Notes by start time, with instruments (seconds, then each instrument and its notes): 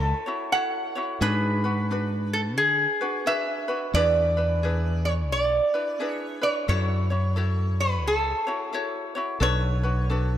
Already playing: fretless electric bass C#2, ukulele E4 F#4 A4 C#5, resonator guitar played with a steel bar A4
0.26 ukulele E4 F#4 C#5
0.52 ukulele E4 F#4 A4 C#5, resonator guitar played with a steel bar F#5
0.95 ukulele E4 F#4 C#5
1.21 fretless electric bass G#2, ukulele D4 F#4 G#4 B4, resonator guitar played with a steel bar B4
1.64 ukulele D4 F#4 B4
1.91 ukulele D4 F#4 B4
2.33 resonator guitar played with a steel bar A4
2.57 fretless electric bass D3, resonator guitar played with a steel bar G#4
3.01 ukulele D4 F#4 B4
3.26 ukulele D4 F#4 G#4 B4, resonator guitar played with a steel bar E5
3.68 ukulele D4 F#4 B4
3.94 fretless electric bass E2, ukulele D4 E4 G#4 B4, resonator guitar played with a steel bar D5
4.37 ukulele D4 E4 B4
4.63 ukulele D4 E4 G#4 B4
5.05 resonator guitar played with a steel bar C#5
5.31 fretless electric bass B1, resonator guitar played with a steel bar D5
5.74 ukulele D4 E4 B4
6.00 ukulele D4 E4 G#4 B4
6.08 resonator guitar played with a steel bar C#5
6.41 ukulele D4 E4 B4, resonator guitar played with a steel bar C#5
6.68 fretless electric bass F#2, ukulele E4 F#4 A4 C#5, resonator guitar played with a steel bar C#5
7.10 ukulele E4 F#4 C#5
7.36 ukulele E4 F#4 A4 C#5
7.80 resonator guitar played with a steel bar B4
8.04 fretless electric bass C#2, resonator guitar played with a steel bar A4
8.47 ukulele E4 F#4 C#5
8.73 ukulele E4 F#4 A4 C#5
9.15 ukulele E4 F#4 C#5
9.40 fretless electric bass B1, ukulele D4 F#4 A4 B4, resonator guitar played with a steel bar C#5
9.83 ukulele D4 F#4 B4
10.10 ukulele D4 F#4 A4 B4